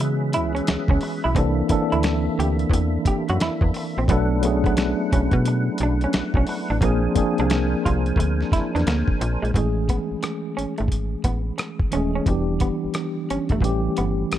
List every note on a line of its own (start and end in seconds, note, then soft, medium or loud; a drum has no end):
0.00 0.37 C#3 medium
0.00 1.35 E3 medium
0.00 1.37 G#3 medium
0.00 1.37 B3 medium
0.00 1.33 C#4 medium
0.00 1.38 C#4 medium
0.00 1.37 F#4 medium
0.00 1.33 G#4 medium
0.00 1.38 G#4 loud
0.00 1.33 B4 medium
0.00 4.04 E5 medium
0.00 muted clean electric guitar stroke soft
0.00 closed hi-hat medium
0.33 0.62 C#2 medium
0.33 0.51 E4 medium
0.33 closed hi-hat medium
0.55 0.65 C#4 medium
0.55 closed hi-hat soft
0.67 0.78 C#2 soft
0.67 snare loud
0.67 closed hi-hat medium
0.88 0.99 C#2 medium
0.88 1.00 C#4 medium
0.88 kick loud
1.01 muted clean electric guitar stroke soft
1.01 open hi-hat medium
1.24 1.34 B1 medium
1.24 1.33 E4 medium
1.35 1.63 C2 loud
1.35 1.68 E3 loud
1.35 4.05 A#3 medium
1.35 1.68 A#3 medium
1.35 1.53 C4 medium
1.35 1.68 C4 medium
1.35 1.69 D4 medium
1.35 6.77 E4 medium
1.35 1.69 A4 loud
1.35 kick loud
1.35 closed hi-hat medium
1.69 2.99 E3 medium
1.69 2.99 A#3 medium
1.69 3.00 C4 medium
1.69 3.00 D4 medium
1.69 3.01 A4 medium
1.69 muted clean electric guitar stroke soft
1.69 kick medium
1.69 closed hi-hat medium
1.92 2.29 D2 medium
1.92 2.02 E4 medium
1.92 closed hi-hat soft
2.03 snare loud
2.03 closed hi-hat medium
2.39 2.66 D2 medium
2.39 2.56 G4 medium
2.39 closed hi-hat medium
2.59 closed hi-hat soft
2.70 2.98 E2 medium
2.70 kick medium
2.70 closed hi-hat medium
2.74 muted clean electric guitar stroke soft
3.05 3.24 G4 medium
3.05 kick loud
3.05 closed hi-hat medium
3.29 3.39 F#2 medium
3.29 3.39 F#4 medium
3.29 closed hi-hat soft
3.40 3.50 E2 soft
3.40 3.58 E4 medium
3.40 snare loud
3.40 closed hi-hat medium
3.61 3.72 E2 medium
3.61 kick loud
3.74 muted clean electric guitar stroke soft
3.74 open hi-hat medium
3.98 4.07 A#1 medium
3.98 4.07 C4 medium
4.08 4.95 B1 loud
4.08 4.41 F#3 loud
4.08 4.41 A3 medium
4.08 4.41 B3 medium
4.08 4.26 B3 medium
4.08 4.42 D4 medium
4.08 6.79 B4 medium
4.08 6.79 F#5 medium
4.08 kick loud
4.08 closed hi-hat medium
4.12 4.43 A4 loud
4.42 5.72 F#3 medium
4.42 5.73 A3 medium
4.42 5.73 B3 medium
4.42 4.52 C#4 medium
4.42 muted clean electric guitar stroke soft
4.42 closed hi-hat medium
4.46 5.74 G#4 loud
4.51 5.76 D4 medium
4.64 4.75 B3 medium
4.64 kick medium
4.64 closed hi-hat soft
4.77 snare loud
4.77 closed hi-hat medium
5.12 5.29 B1 medium
5.12 5.29 C#4 medium
5.12 kick medium
5.12 closed hi-hat medium
5.31 5.70 B2 loud
5.31 kick medium
5.31 closed hi-hat soft
5.45 muted clean electric guitar stroke soft
5.45 closed hi-hat medium
5.78 6.07 B1 loud
5.78 closed hi-hat medium
5.83 5.98 D4 medium
6.01 6.12 C#4 medium
6.01 closed hi-hat soft
6.13 6.23 B1 soft
6.13 snare loud
6.13 closed hi-hat medium
6.34 6.45 B1 medium
6.34 6.46 C#4 medium
6.34 kick loud
6.47 muted clean electric guitar stroke soft
6.47 open hi-hat medium
6.70 6.80 A1 medium
6.70 6.79 D4 medium
6.81 7.09 A#1 loud
6.81 7.13 F3 medium
6.81 7.14 A#3 medium
6.81 6.99 A#3 medium
6.81 7.14 C4 medium
6.81 7.14 D4 medium
6.81 7.15 G#4 loud
6.81 9.51 A#4 medium
6.81 9.51 C5 medium
6.81 9.51 G#5 medium
6.81 kick loud
6.81 closed hi-hat medium
7.14 8.44 F3 medium
7.14 8.45 A#3 medium
7.14 8.45 C4 medium
7.14 8.46 D4 medium
7.14 8.46 G#4 medium
7.14 muted clean electric guitar stroke soft
7.14 kick medium
7.14 closed hi-hat medium
7.38 7.75 C2 loud
7.38 7.48 D4 medium
7.38 closed hi-hat soft
7.50 snare loud
7.50 closed hi-hat medium
7.85 8.13 C2 loud
7.85 8.02 F4 medium
7.85 kick medium
7.85 closed hi-hat medium
8.06 closed hi-hat soft
8.16 8.44 D2 loud
8.16 muted clean electric guitar stroke soft
8.16 kick medium
8.16 closed hi-hat medium
8.41 snare soft
8.52 8.61 E2 soft
8.52 8.69 E4 medium
8.52 kick loud
8.52 snare soft
8.52 closed hi-hat medium
8.75 8.84 E2 medium
8.75 8.84 D4 medium
8.75 snare soft
8.75 closed hi-hat soft
8.87 9.04 D2 medium
8.87 9.04 A#3 medium
8.87 snare loud
8.87 closed hi-hat medium
9.08 kick loud
9.21 9.38 A#1 loud
9.21 muted clean electric guitar stroke soft
9.21 closed hi-hat medium
9.42 9.52 A#1 medium
9.42 9.52 G#3 medium
9.42 closed hi-hat soft
9.54 9.99 A1 loud
9.54 10.83 E3 medium
9.54 10.84 G#3 medium
9.54 10.84 A3 medium
9.54 10.85 C#4 medium
9.54 10.85 G#4 medium
9.54 kick loud
9.54 closed hi-hat medium
9.89 10.06 B3 medium
9.89 kick medium
9.89 closed hi-hat medium
10.11 10.16 G#1 medium
10.23 muted clean electric guitar stroke soft
10.23 cross-stick loud
10.23 closed hi-hat medium
10.57 10.66 G#1 soft
10.57 10.73 C#4 medium
10.57 closed hi-hat medium
10.78 11.16 G#1 medium
10.78 10.88 A3 medium
10.78 closed hi-hat soft
10.88 kick medium
10.88 closed hi-hat medium
11.24 11.52 A1 medium
11.24 11.41 B3 medium
11.24 kick medium
11.24 closed hi-hat medium
11.58 muted clean electric guitar stroke soft
11.58 cross-stick medium
11.58 closed hi-hat medium
11.79 kick loud
11.91 12.21 D#1 medium
11.91 12.24 E3 medium
11.91 12.25 G#3 medium
11.91 12.25 A3 medium
11.91 12.10 C#4 medium
11.91 12.26 C#4 medium
11.91 12.26 G#4 medium
11.91 closed hi-hat medium
12.15 12.25 C#4 medium
12.26 12.71 E1 loud
12.26 13.56 E3 medium
12.26 13.57 G3 medium
12.26 13.57 B3 medium
12.26 13.57 D4 medium
12.26 13.58 G4 medium
12.26 kick loud
12.26 closed hi-hat medium
12.60 12.78 B3 medium
12.60 kick medium
12.60 closed hi-hat medium
12.85 12.89 G1 soft
12.94 muted clean electric guitar stroke soft
12.94 cross-stick medium
12.94 closed hi-hat medium
13.30 13.39 G1 soft
13.30 13.47 C#4 medium
13.30 closed hi-hat medium
13.49 13.60 G1 medium
13.49 13.61 A3 medium
13.49 kick medium
13.49 closed hi-hat soft
13.61 13.89 A1 medium
13.61 14.39 E3 medium
13.61 14.39 G3 medium
13.61 14.39 A3 medium
13.61 14.39 C#4 medium
13.61 kick medium
13.61 closed hi-hat medium
13.65 14.39 G4 loud
13.97 14.25 G1 medium
13.97 14.14 B3 medium
13.97 closed hi-hat medium
14.32 14.39 A1 soft
14.32 cross-stick loud
14.32 closed hi-hat medium